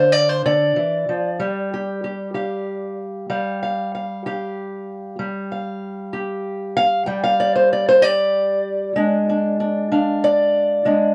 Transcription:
0.00 0.44 D3 medium
0.00 1.39 D4 medium
0.00 0.12 C5 medium
0.00 0.45 F5 medium
0.12 0.29 D5 medium
0.29 0.45 C5 medium
0.46 0.76 D3 medium
0.46 2.97 D5 medium
0.76 1.08 E3 medium
1.09 1.40 F3 medium
1.40 3.29 G3 medium
1.40 1.73 G4 soft
1.74 2.04 G4 soft
2.04 2.34 G4 soft
2.34 4.23 G4 soft
2.34 3.30 F5 soft
3.30 5.18 G3 medium
3.30 3.62 F5 soft
3.63 3.94 F5 soft
3.95 4.26 F5 soft
4.26 5.15 G4 medium
4.26 5.22 F5 soft
5.19 7.06 G3 medium
5.52 6.76 F5 soft
6.13 8.00 G4 medium
6.77 7.06 F5 loud
7.06 8.96 G3 medium
7.06 7.22 G5 medium
7.24 8.02 F5 medium
7.40 7.55 D5 medium
7.55 7.71 C5 medium
7.73 7.87 D5 medium
7.89 8.02 C5 medium
8.02 8.92 G4 medium
8.02 10.23 D5 medium
8.96 10.84 G#3 medium
8.96 9.29 D4 soft
9.29 9.60 D4 soft
9.60 9.91 D4 soft
9.92 10.86 D4 medium
9.92 11.15 F5 soft
10.24 11.15 D5 medium
10.85 11.15 G#3 medium
10.85 11.15 D4 soft

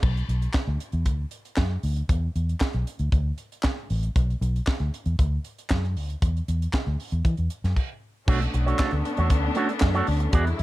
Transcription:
0.03 0.21 B1 medium
0.03 kick loud
0.03 crash medium
0.17 closed hi-hat soft
0.29 0.46 B1 medium
0.29 closed hi-hat medium
0.42 closed hi-hat soft
0.54 kick loud
0.54 snare loud
0.54 clap medium
0.68 0.76 D2 medium
0.80 closed hi-hat medium
0.92 1.06 E2 medium
0.92 closed hi-hat soft
1.05 1.24 D2 medium
1.05 kick medium
1.05 closed hi-hat medium
1.31 closed hi-hat medium
1.45 closed hi-hat soft
1.56 1.76 F#2 medium
1.56 kick medium
1.56 snare loud
1.56 clap medium
1.83 2.01 D2 medium
1.83 open hi-hat medium
1.96 closed hi-hat soft
2.09 2.27 E2 loud
2.09 kick loud
2.09 closed hi-hat loud
2.36 2.53 E2 medium
2.36 closed hi-hat medium
2.49 closed hi-hat soft
2.60 kick loud
2.60 snare loud
2.60 clap medium
2.73 2.83 B1 medium
2.73 closed hi-hat soft
2.87 closed hi-hat medium
2.99 3.08 D2 medium
2.99 closed hi-hat soft
3.12 3.30 D2 medium
3.12 kick loud
3.12 closed hi-hat medium
3.38 closed hi-hat medium
3.52 closed hi-hat soft
3.63 kick medium
3.63 snare loud
3.63 clap medium
3.90 4.08 A1 medium
3.90 open hi-hat medium
4.03 closed hi-hat soft
4.16 4.34 B1 loud
4.16 kick loud
4.16 closed hi-hat medium
4.30 closed hi-hat soft
4.41 4.59 B1 loud
4.41 closed hi-hat medium
4.56 closed hi-hat soft
4.67 kick loud
4.67 snare loud
4.67 clap medium
4.79 4.89 D2 medium
4.79 closed hi-hat soft
4.94 closed hi-hat medium
5.06 5.15 E2 medium
5.06 closed hi-hat soft
5.19 5.37 D2 medium
5.19 kick loud
5.19 closed hi-hat medium
5.44 closed hi-hat medium
5.58 closed hi-hat soft
5.70 5.96 F#2 medium
5.70 kick medium
5.70 snare loud
5.70 clap medium
5.84 closed hi-hat soft
5.96 6.14 D2 medium
5.96 open hi-hat medium
6.10 closed hi-hat soft
6.22 6.40 E2 loud
6.22 kick loud
6.22 closed hi-hat medium
6.37 closed hi-hat soft
6.48 6.66 E2 medium
6.48 closed hi-hat medium
6.62 closed hi-hat soft
6.73 kick loud
6.73 snare loud
6.73 clap medium
6.87 6.96 D2 medium
7.00 open hi-hat medium
7.12 7.21 E2 medium
7.12 closed hi-hat soft
7.25 7.34 E3 medium
7.25 kick loud
7.25 closed hi-hat medium
7.37 7.47 E2 medium
7.37 closed hi-hat soft
7.50 closed hi-hat medium
7.64 7.73 F#2 medium
7.64 snare soft
7.64 closed hi-hat soft
7.76 kick medium
7.76 crash medium
8.28 8.46 B1 loud
8.28 8.42 A3 medium
8.28 10.32 A3 medium
8.28 10.32 B3 medium
8.28 10.32 C#4 medium
8.28 8.40 D4 medium
8.28 10.32 D4 medium
8.28 8.40 F#4 medium
8.28 8.40 C#5 loud
8.28 kick loud
8.28 crash loud
8.41 muted clean electric guitar stroke soft
8.41 closed hi-hat soft
8.54 8.72 B1 loud
8.54 muted clean electric guitar stroke soft
8.54 closed hi-hat medium
8.66 8.77 A3 medium
8.66 8.78 D4 medium
8.66 8.78 F#4 medium
8.66 8.78 C#5 medium
8.66 closed hi-hat soft
8.79 8.93 A3 medium
8.79 8.92 D4 medium
8.79 8.92 F#4 loud
8.79 8.91 C#5 loud
8.79 kick loud
8.79 snare loud
8.79 clap loud
8.91 9.01 D2 medium
8.91 muted clean electric guitar stroke medium
8.91 closed hi-hat soft
9.05 muted clean electric guitar stroke soft
9.05 closed hi-hat medium
9.17 9.31 E2 loud
9.17 9.30 A3 medium
9.17 9.30 D4 soft
9.17 9.30 F#4 medium
9.17 9.29 C#5 medium
9.17 closed hi-hat soft
9.30 9.48 D2 medium
9.30 muted clean electric guitar stroke soft
9.30 kick loud
9.30 closed hi-hat medium
9.44 muted clean electric guitar stroke medium
9.55 9.71 A3 loud
9.55 9.69 D4 loud
9.55 9.69 F#4 loud
9.55 9.68 C#5 loud
9.55 closed hi-hat medium
9.69 muted clean electric guitar stroke medium
9.69 closed hi-hat medium
9.80 10.00 F#2 medium
9.80 muted clean electric guitar stroke soft
9.80 kick loud
9.80 snare loud
9.80 clap medium
9.94 10.07 A3 medium
9.94 10.07 D4 medium
9.94 10.08 F#4 medium
9.94 10.08 C#5 medium
9.94 closed hi-hat soft
10.07 10.26 D2 loud
10.07 open hi-hat medium
10.20 muted clean electric guitar stroke soft
10.20 closed hi-hat soft
10.33 10.51 E2 loud
10.33 10.63 D3 medium
10.33 10.63 F#3 medium
10.33 10.63 G#3 medium
10.33 10.48 B3 loud
10.33 10.63 E4 medium
10.33 10.45 F#4 loud
10.33 10.45 G#4 medium
10.33 10.44 D5 medium
10.33 kick loud
10.33 closed hi-hat loud
10.46 muted clean electric guitar stroke soft
10.46 closed hi-hat soft
10.58 10.63 E2 loud
10.58 muted clean electric guitar stroke soft
10.58 closed hi-hat medium

